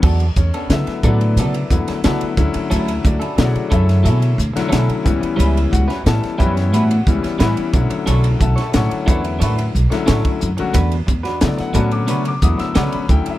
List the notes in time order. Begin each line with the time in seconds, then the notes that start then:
0.03 E2 F#3 B3 D4 A4, kick, crash
0.20 ride
0.36 E2 C#4 C#5, muted clean electric guitar stroke, kick, hi-hat pedal
0.54 B3 D4 A4, ride
0.70 C#3 D3 F#3 A3 B3 E4 A4 B4 E5, muted clean electric guitar stroke, snare, hi-hat pedal, ride
0.87 muted upright bass stroke, muted clean electric guitar stroke, snare, ride
1.03 A2 D3 F#3 A3 B3 D4 E4 A4 B4 D5, kick, hi-hat pedal
1.20 muted clean electric guitar stroke, ride
1.37 C#3 F#3 B3 D4 E4 A4 D5, hi-hat pedal, ride
1.41 B4
1.54 muted clean electric guitar stroke, ride
1.70 E2 D3 F#3 A3 B3 E4, kick, hi-hat pedal
1.88 muted clean electric guitar stroke, muted upright bass stroke, snare, ride
2.04 C#3 D3 F#3 A3 B3 D4 E4 A4, snare, hi-hat pedal, ride
2.21 muted upright bass stroke, ride
2.37 D2 D3 F#3 A3 C#4 E4, muted clean electric guitar stroke, kick, hi-hat pedal
2.54 muted clean electric guitar stroke, muted upright bass stroke, ride
2.70 D2 F#3 C#4 E4 A4, hi-hat pedal, ride
2.88 ride
3.04 D2 D4 F#4 A4 D5, muted clean electric guitar stroke, kick, hi-hat pedal
3.20 C#4 E4 A4, ride
3.36 B2 C#3 D3 F#3 A3 E4, muted clean electric guitar stroke, snare, hi-hat pedal, ride
3.41 F#4 C#5 D5 F#5
3.53 muted clean electric guitar stroke, muted upright bass stroke, ride
3.70 F#2 F#3 C#4 E4 A4 C#5 E5, kick, hi-hat pedal
3.87 muted clean electric guitar stroke, snare, ride
4.03 B2 F#3 C#4 E4 A4 C#5 E5, hi-hat pedal, ride
4.20 muted clean electric guitar stroke, ride
4.38 D2, hi-hat pedal
4.53 D3 F#3 A3 C#4 E4, muted clean electric guitar stroke, muted upright bass stroke, snare, ride
4.69 B2 F#3 C#4 E4 A4, hi-hat pedal, ride
4.73 snare
4.89 muted upright bass stroke, ride
5.03 C#2 E3 G3 B3 C#4 E4, muted clean electric guitar stroke, kick, hi-hat pedal
5.21 muted clean electric guitar stroke, muted upright bass stroke, ride
5.36 C#2 G3 C#4 E4 B4, hi-hat pedal, ride
5.57 ride
5.71 C#2 F#4 F#5, muted clean electric guitar stroke, kick, hi-hat pedal
5.88 C#4 E4 B4, snare, ride
6.04 A2 E3 G3 B3 C#4 E4 A4 A5, muted clean electric guitar stroke, snare, hi-hat pedal, ride
6.21 muted clean electric guitar stroke, muted upright bass stroke, snare, ride
6.38 F#2 E3 G3 B3 C#4 E4 G4 B4 C#5 E5 G5, kick, hi-hat pedal
6.56 muted clean electric guitar stroke, snare, ride
6.73 A2 G3 C#4 E4 F#4 B4 F#5, hi-hat pedal, ride
6.90 muted clean electric guitar stroke, ride
7.07 C#2 E3 G3 B3 C#4 E4, kick, hi-hat pedal
7.23 muted clean electric guitar stroke, muted upright bass stroke, snare, ride
7.39 A2 E3 G3 B3 C#4 E4 B4, snare, hi-hat pedal, ride
7.57 muted upright bass stroke, ride
7.73 B1 D3 F#3 A3 C#4 E4, muted clean electric guitar stroke, kick, hi-hat pedal
7.90 muted clean electric guitar stroke, muted upright bass stroke, ride
8.06 B1 D4 E4 A4 C#5, hi-hat pedal, ride
8.24 ride
8.40 B1 A4 E5 F#5 A5, muted clean electric guitar stroke, kick, hi-hat pedal
8.56 E4 A4 C#5, snare, ride
8.72 A2 D3 F#3 A3 C#4 E4 C#5 F#5, muted clean electric guitar stroke, snare, hi-hat pedal, ride
8.76 A5 C#6
8.90 muted clean electric guitar stroke, muted upright bass stroke, ride
9.06 E2 D4 E4 A4 B4 C#5 E5 F#5 B5, kick, hi-hat pedal
9.23 muted clean electric guitar stroke, ride
9.39 A2 D4 E4 A4 C#5 B5, hi-hat pedal, ride
9.43 B4 E5 F#5
9.57 muted clean electric guitar stroke, ride
9.75 B1, hi-hat pedal
9.90 D3 F#3 A3 C#4 E4, muted clean electric guitar stroke, muted upright bass stroke, snare, ride
10.06 A2 D4 E4 A4 C#5, snare, hi-hat pedal, ride
10.25 muted upright bass stroke, kick, ride
10.40 F#2, muted clean electric guitar stroke, hi-hat pedal
10.57 D3 F#3 A3 C#4 F#4, muted clean electric guitar stroke, muted upright bass stroke, ride
10.73 E2 A3 D4 F#4 B4, kick, hi-hat pedal, ride
10.92 ride
11.07 E2, muted clean electric guitar stroke, kick, hi-hat pedal
11.23 D4 F#4 B4, snare, ride
11.41 C#3 D3 F#3 A3 B3 E4 D5, muted clean electric guitar stroke, snare, hi-hat pedal, ride
11.58 F#5, muted clean electric guitar stroke, muted upright bass stroke, snare, ride
11.73 A2 D3 F#3 A3 B3 C#4 D4 F#4 B4 A5, kick, hi-hat pedal
11.91 D6, muted clean electric guitar stroke, ride
12.07 C#3 A3 D4 F#4 B4 C#6, hi-hat pedal, ride
12.25 D6, muted clean electric guitar stroke, ride
12.42 E2 D3 F#3 A3 B3 E4 D#6, kick, hi-hat pedal
12.58 E6, muted clean electric guitar stroke, muted upright bass stroke, snare, ride
12.75 C#3 D3 F#3 A3 B3 C#4 D4 F#4 B4 D6, snare, hi-hat pedal, ride
12.92 B5, muted upright bass stroke, ride
13.09 D2 D3 F#3 A3 C#4 E4 G5, muted clean electric guitar stroke, kick, hi-hat pedal
13.25 muted clean electric guitar stroke, muted upright bass stroke, ride
13.30 E5